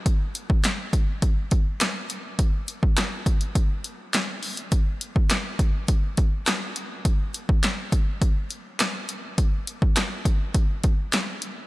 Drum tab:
HH |x-x-x-x-x-x-x-x-|x-x-x-xxx-x-x-ox|x-x-x-x-x-x-x-x-|x-x-x-x-x-x-x-x-|
CP |----x-------x---|----x-------x---|----x-------x---|----x-------x---|
SD |----o-------o---|----o-------o---|----o-------o---|----o-------o---|
BD |o--o--o-o-o-----|o--o--o-o-------|o--o--o-o-o-----|o--o--o-o-------|

HH |x-x-x-x-x-x-x-x-|
CP |----x-------x---|
SD |----o-------o---|
BD |o--o--o-o-o-----|